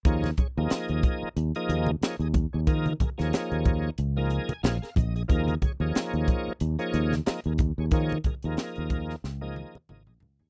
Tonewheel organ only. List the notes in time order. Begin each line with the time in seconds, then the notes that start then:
0.05 F3 A#3 D#4 G#4 C#5
0.39 G#4 C#5
0.58 F3 A#3 D#4 G#4 D#5
1.56 F3 A#3 D#4 G#4 D#5
2.03 F3 A#3 D#4 G#4 C#5
2.21 G#4 D#5
2.53 G#4 C#5
2.68 F3 A#3 D#4 G#4 A#4
3.01 G#4 A#4
3.18 F3 A#3 D#4 G#4 C#5
4.17 F3 A#3 D#4 G#4 A#4
4.31 G#5
4.63 F3 A#3 D#4 G#4 C#5 F5
4.82 G#4 A#4
4.98 D#5
5.15 G#4 D#5
5.28 F3 A#3 D#4 G#4 A#4
5.63 G#4 C#5
5.80 F3 A#3 D#4 G#4 C#5
6.79 F3 A#3 D#4 G#4 C#5
7.26 F3 A#3 D#4 G#4 D#5
7.47 G#4 A#4
7.79 G#4 C#5
7.93 F3 A#3 D#4 G#4 C#5
8.26 G#4 A#4
8.45 F3 A#3 D#4 G#4 A#4
9.41 F3 A#3 D#4 G#4 D#5
9.90 F3 A#3 D#4 G#4 D#5
10.06 G#4 D#5
10.40 G#4 C#5